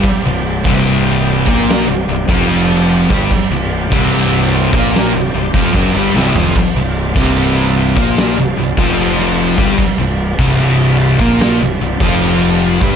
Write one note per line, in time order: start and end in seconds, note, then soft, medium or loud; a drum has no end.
0.00 12.96 C4 medium
0.00 6.51 G4 medium
0.00 12.96 D5 medium
0.00 kick loud
0.00 crash medium
0.25 0.63 C1 medium
0.25 0.58 C2 medium
0.65 1.43 C1 loud
0.65 1.46 C2 medium
0.65 1.46 C3 loud
0.65 kick loud
0.87 crash medium
1.47 1.85 A#1 loud
1.47 1.87 A#2 loud
1.47 1.87 A#3 loud
1.47 kick loud
1.68 snare loud
1.68 crash medium
1.87 2.07 C1 medium
1.87 2.07 C2 medium
2.08 2.27 C1 medium
2.08 2.28 C2 medium
2.28 3.06 F1 loud
2.28 3.09 F2 loud
2.28 3.09 F3 loud
2.28 kick loud
2.50 crash medium
2.73 snare soft
3.09 3.29 G1 loud
3.09 3.29 G2 medium
3.09 3.29 G3 loud
3.09 kick loud
3.31 kick loud
3.31 crash medium
3.50 3.88 C1 medium
3.50 3.84 C2 medium
3.90 4.69 C1 medium
3.90 4.71 C2 loud
3.90 4.71 C3 medium
3.90 kick loud
4.13 crash medium
4.72 5.11 A#1 loud
4.72 5.12 A#2 loud
4.72 5.12 A#3 loud
4.72 kick loud
4.94 snare loud
4.94 crash medium
5.14 5.32 C1 medium
5.14 5.33 C2 medium
5.35 5.53 C1 medium
5.35 5.54 C2 medium
5.54 5.73 F1 loud
5.54 5.74 F2 loud
5.54 5.74 F3 loud
5.54 kick loud
5.74 5.93 F#1 medium
5.74 5.93 F#2 medium
5.74 5.94 F#3 loud
5.74 kick loud
5.74 crash medium
5.94 6.13 G1 loud
5.94 6.14 G2 medium
5.94 6.14 G3 loud
6.13 6.33 C1 loud
6.13 6.34 C2 loud
6.13 6.34 C3 loud
6.18 snare medium
6.35 6.54 F1 medium
6.35 6.54 F2 medium
6.35 6.54 F3 loud
6.35 floor tom medium
6.55 12.96 F4 medium
6.55 kick loud
6.55 crash medium
6.75 7.13 C1 medium
6.75 7.08 C2 medium
7.15 7.93 C1 medium
7.15 7.95 C2 medium
7.15 7.96 C3 loud
7.15 kick loud
7.36 crash medium
7.96 8.34 A#1 loud
7.96 8.36 A#2 loud
7.96 8.36 A#3 loud
7.96 kick loud
8.16 snare loud
8.16 crash medium
8.37 8.56 C1 medium
8.37 8.56 C2 medium
8.57 8.76 C1 medium
8.57 8.77 C2 medium
8.77 9.55 F1 loud
8.77 9.57 F2 loud
8.77 9.58 F3 loud
8.77 kick loud
8.97 crash medium
9.19 snare soft
9.58 9.77 G1 loud
9.58 9.77 G2 medium
9.58 9.78 G3 loud
9.58 kick loud
9.78 kick loud
9.78 crash medium
9.98 10.37 C1 medium
9.98 10.31 C2 medium
10.38 11.16 C1 loud
10.38 11.19 C2 medium
10.38 11.19 C3 loud
10.38 kick loud
10.58 crash medium
11.19 11.58 A#1 loud
11.19 11.59 A#2 loud
11.19 11.60 A#3 loud
11.19 kick loud
11.39 snare loud
11.39 crash medium
11.61 11.80 C1 medium
11.61 11.80 C2 medium
11.81 12.00 C1 medium
11.81 12.00 C2 medium
12.00 12.78 F1 loud
12.00 12.81 F2 medium
12.00 12.81 F3 loud
12.00 kick loud
12.20 crash medium
12.81 12.96 G1 medium
12.81 12.96 G2 medium
12.81 12.96 G3 loud
12.81 kick loud